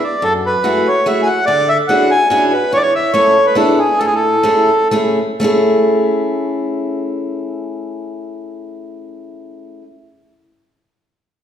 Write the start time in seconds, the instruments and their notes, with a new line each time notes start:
0.04 accordion D5
0.22 steel-string acoustic guitar F#2, accordion A4
0.46 accordion B4
0.64 steel-string acoustic guitar A3 E4 F#4 G#4
0.88 accordion C#5
1.06 steel-string acoustic guitar A3 E4 F#4 G#4, accordion E5
1.23 accordion G#5
1.27 accordion F#5
1.46 steel-string acoustic guitar D3, accordion D5
1.69 accordion E5
1.88 steel-string acoustic guitar C#4 D4 E4 F#4 G#4, accordion F#5
2.11 accordion G#5
2.30 steel-string acoustic guitar C#4 D4 E4 F#4 G#4, accordion G#5
2.52 accordion B4
2.73 steel-string acoustic guitar E2, accordion C#5
2.77 accordion D5
2.82 accordion C#5
2.95 accordion E5
3.13 steel-string acoustic guitar A3 C#4 E4 A4, accordion C#5
3.46 accordion B4
3.55 steel-string acoustic guitar B3 D4 E4 G#4, accordion A4
3.79 accordion G#4
3.99 steel-string acoustic guitar A2, accordion A4
4.07 accordion G#4
4.15 accordion A4
4.43 steel-string acoustic guitar A3 C#4 E4 G#4
4.91 steel-string acoustic guitar A3 C#4 E4 G#4
5.40 steel-string acoustic guitar A3 C#4 E4
5.44 steel-string acoustic guitar G#4